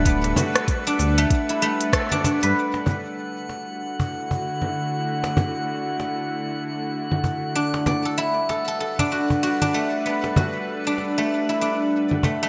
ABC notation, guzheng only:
X:1
M:4/4
L:1/16
Q:"Swing 16ths" 1/4=96
K:D
V:1 name="Guzheng"
B, z F z2 D z A,2 E A, z A D D B | z16 | z16 | D2 d A E z A A A D F2 F D A,2 |
B, z F z2 D z A,2 E D z3 A, A, |]